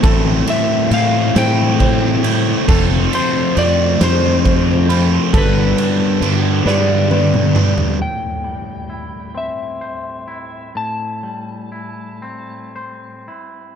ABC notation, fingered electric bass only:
X:1
M:6/8
L:1/8
Q:3/8=45
K:Am
V:1 name="Fingered electric bass" clef=bass
A,,, z A,, A,,3 | F,,, z F,, F,,3 | G,,, z G,, G,,3 | z6 |
z6 |]